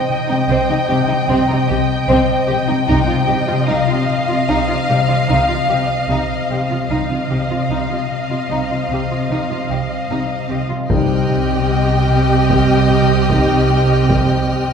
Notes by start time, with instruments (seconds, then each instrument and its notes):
Already playing: harp C4, violin section D#5 G5
0.09 harp C3
0.28 cello section C3, violin section D#4
0.48 double bass section C2, cello section C3, harp C4, violin section C4
0.69 cello section C3, violin section D#4
0.88 double bass section C2, cello section C3, harp C3, violin section G4
1.08 cello section C3, violin section D#4
1.27 double bass section C2, harp C3, cello section C3, violin section C4
1.47 cello section C3, violin section D#4
1.68 double bass section C2, cello section C3, harp C4, violin section G4
2.08 double bass section C2, harp C3, cello section C3, violin section C4
2.47 double bass section C2, cello section C3, harp C4, violin section G4
2.67 cello section C3, violin section D#4
2.87 double bass section C2, harp C3, cello section C3, violin section D#4 D#5, taiko
3.07 cello section C3, violin section F4
3.27 double bass section C2, harp C3, cello section C3, violin section G4
3.47 cello section C3, violin section F4
3.66 double bass section C2, cello section C3, harp C4, violin section D#4 F5
3.87 cello section C3, violin section F4
4.09 harp C3
4.28 cello section C3, violin section F4
4.48 double bass section C2, cello section C3, harp C4, violin section D#4
4.68 cello section C3, violin section F4
4.89 double bass section C2, cello section C3, harp C3, violin section G4
5.08 cello section C3, violin section F4
5.28 double bass section C2, harp C3, cello section C3, violin section D#4
5.49 cello section C3, violin section F4
5.69 double bass section C2, cello section C3, harp C4, violin section G4
6.08 double bass section C2, harp C3, cello section C3, violin section D#4
6.49 double bass section C2, cello section C3, harp C4, violin section G4
6.70 cello section C3, violin section F4
6.88 double bass section C2, harp C3, cello section C3, violin section D#4 D#5 F5
7.11 cello section C3, violin section F4
7.30 double bass section C2, harp C3, cello section C3, violin section G4
7.50 cello section C3, violin section F4
7.69 double bass section C2, cello section C3, harp C4, violin section D#4
7.90 cello section C3, violin section F4
8.11 harp C3
8.30 cello section C3, violin section F4
8.49 double bass section C2, cello section C3, harp C4, violin section D#4
8.69 cello section C3, violin section F4
8.89 double bass section C2, cello section C3, harp C3, violin section G4
9.10 cello section C3, violin section F4
9.28 double bass section C2, cello section C3, harp C3, violin section D#4
9.49 cello section C3, violin section F4
9.69 double bass section C2, cello section C3, harp C4, violin section G4
10.09 double bass section C2, cello section C3, harp C3, violin section D#4
10.49 double bass section C2, cello section C3, harp C4, violin section G4
10.69 cello section C3, violin section F4
10.88 double bass section C2, harp C3, cello section C3, french horn section G3 D#4, viola section G4, violin section D#5 G5 D#6 F6 F#6, taiko
11.30 harp C3
11.71 harp C4
12.09 harp C3
12.49 harp C4, taiko
12.90 harp C3
13.30 harp C3, french horn section G3 D#4, taiko
13.70 harp C4
14.09 harp C3, taiko
14.50 harp C4